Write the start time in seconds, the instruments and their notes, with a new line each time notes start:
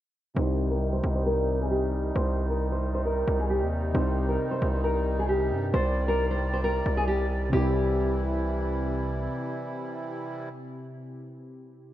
0.35 808-style bass C2, synth keys C3 C4 D#4 G4, accordion C3 D#3 G3 D#4, nylon-string guitar C5
0.71 nylon-string guitar A#4
0.93 nylon-string guitar C5
1.04 808-style bass C2
1.15 nylon-string guitar C5
1.26 nylon-string guitar A#4
1.61 nylon-string guitar G#4
1.71 nylon-string guitar G4
2.16 808-style bass C2, nylon-string guitar C5
2.50 nylon-string guitar A#4
2.72 nylon-string guitar C5
2.95 nylon-string guitar C5
3.05 nylon-string guitar A#4
3.28 808-style bass C2
3.39 nylon-string guitar G#4
3.50 nylon-string guitar G4
3.62 808-style bass D#2
3.93 808-style bass C2, synth keys C3 C4 D#4 G4, nylon-string guitar C5
4.29 nylon-string guitar A#4
4.51 nylon-string guitar C5
4.62 808-style bass C2
4.74 nylon-string guitar C5
4.84 nylon-string guitar A#4
5.19 nylon-string guitar G#4
5.29 nylon-string guitar G4
5.51 808-style bass G2
5.74 808-style bass C2, nylon-string guitar C5, accordion D5
6.08 nylon-string guitar A#4
6.31 nylon-string guitar C5
6.53 nylon-string guitar C5
6.64 nylon-string guitar A#4
6.86 808-style bass C2
6.97 nylon-string guitar G#4
7.08 nylon-string guitar G4
7.49 808-style bass C2, synth keys C3 C4, accordion C3 E3 G3 E4, nylon-string guitar G4
7.54 synth keys E4 G4